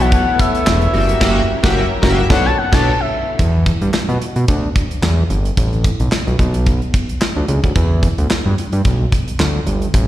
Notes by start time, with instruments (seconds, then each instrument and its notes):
Already playing: analog synth bass B1, string machine A3 B3 E4, analog polysynth B3 E4 A4 C#5
0.01 analog synth lead F#5
0.12 kick, closed hi-hat
0.39 analog synth lead E5, kick, closed hi-hat
0.55 analog synth lead E5, closed hi-hat
0.67 analog synth bass E1, snare, clap
0.81 closed hi-hat
0.93 analog synth bass F#1, string machine F#3 C#4 E4 G4 A#4, analog polysynth A#3 F#4 G4 D5, open hi-hat
1.01 analog polysynth E5
1.09 closed hi-hat
1.20 analog synth bass F#1, analog polysynth A#3 F#4 G4, kick, snare, crash
1.28 analog polysynth E5
1.63 analog synth bass F#1, analog polysynth A#3 F#4 G4, kick, snare
1.71 analog polysynth E5
2.02 analog synth bass F#1, analog polysynth A#3 F#4 G4, kick, snare
2.10 analog polysynth E5
2.30 analog synth bass B1, string machine A3, analog polysynth B3 D4 A4 C#5, analog synth lead F#5, kick, snare
2.46 analog synth lead A5
2.58 analog synth lead F#5
2.72 analog synth bass B1, analog polysynth B3 D4 A4 C#5, analog synth lead A5, kick, snare, crash
3.00 analog synth lead E5
3.39 analog synth bass E2, kick, closed hi-hat
3.66 kick, closed hi-hat
3.82 analog synth bass G2, closed hi-hat
3.94 snare, clap
4.09 analog synth bass B2, closed hi-hat
4.22 closed hi-hat
4.36 analog synth bass B2, closed hi-hat
4.48 analog synth bass D2, kick, closed hi-hat
4.76 kick, closed hi-hat
4.91 closed hi-hat
5.02 analog synth bass E2, snare, clap
5.30 analog synth bass G1, closed hi-hat
5.45 closed hi-hat
5.57 analog synth bass A1, kick, closed hi-hat
5.73 closed hi-hat
5.84 kick, closed hi-hat
6.00 analog synth bass B1, closed hi-hat
6.12 snare, clap
6.27 analog synth bass B1, closed hi-hat
6.39 analog synth bass B1, kick, closed hi-hat
6.54 closed hi-hat
6.66 kick, closed hi-hat
6.82 closed hi-hat
6.94 kick, closed hi-hat
7.09 closed hi-hat
7.21 snare, clap
7.36 analog synth bass D2
7.48 analog synth bass C#2, closed hi-hat
7.64 analog synth bass D2, kick, closed hi-hat
7.76 analog synth bass E2, kick, closed hi-hat
8.03 kick, closed hi-hat
8.18 analog synth bass D2, closed hi-hat
8.30 snare, clap
8.46 analog synth bass G2
8.58 closed hi-hat
8.72 analog synth bass G2, closed hi-hat
8.85 analog synth bass B1, kick, closed hi-hat
9.12 kick, closed hi-hat
9.28 closed hi-hat
9.39 analog synth bass D2, snare, clap
9.66 analog synth bass G1, closed hi-hat
9.82 closed hi-hat
9.94 analog synth bass A1, kick, closed hi-hat